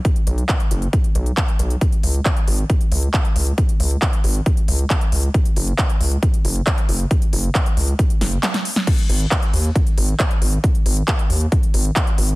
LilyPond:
<<
  \new Staff \with { instrumentName = "Analog synth bass" } { \clef bass \time 4/4 \key gis \minor \tempo 4 = 136 r8 b,,8 r8 fis,,8 r8 b,,8 r8 b,,8 | r8 cis,8 r8 gis,,8 r8 cis,8 r8 cis,8 | r8 cis,8 r8 gis,,8 r8 cis,8 r8 cis,8 | r8 fis,,8 r8 cis,8 r8 fis,,8 r8 fis,,8 |
r8 fis,,8 r8 cis,8 r8 fis,,8 r4 | r8 gis,,8 r8 dis,8 r8 gis,,8 r8 gis,,8 | r8 gis,,8 r8 dis,8 r8 gis,,8 r8 gis,,8 | }
  \new DrumStaff \with { instrumentName = "Drums" } \drummode { \time 4/4 <hh bd>16 hh16 hh16 hh16 <hc hh bd>16 hh16 hh16 hh16 <hh bd>16 hh16 hh16 hh16 <hc hh bd>16 hh16 hh16 hh16 | <hh bd>16 hh16 hho16 hh16 <hc hh bd>16 hh16 hho16 hh16 <hh bd>16 hh16 hho16 hh16 <hc hh bd>16 hh16 hho16 hh16 | <hh bd>16 hh16 hho16 hh16 <hc hh bd>16 hh16 hho16 hh16 <hh bd>16 hh16 hho16 hh16 <hc hh bd>16 hh16 hho16 hh16 | <hh bd>16 hh16 hho16 hh16 <hc hh bd>16 hh16 hho16 hh16 <hh bd>16 hh16 hho16 hh16 <hc hh bd>16 hh16 hho16 hh16 |
<hh bd>16 hh16 hho16 hh16 <hc hh bd>16 hh16 hho16 hh16 <hh bd>16 hh16 <hho sn>16 hh16 <hc hh sn>16 <hh sn>16 hho16 sn16 | <cymc hh bd>16 hh16 hho16 hh16 <hc hh bd>16 hh16 hho16 hh16 <hh bd>16 hh16 hho16 hh16 <hc hh bd>16 hh16 hho16 hh16 | <hh bd>16 hh16 hho16 hh16 <hc hh bd>16 hh16 hho16 hh16 <hh bd>16 hh16 hho16 hh16 <hc hh bd>16 hh16 hho16 hh16 | }
>>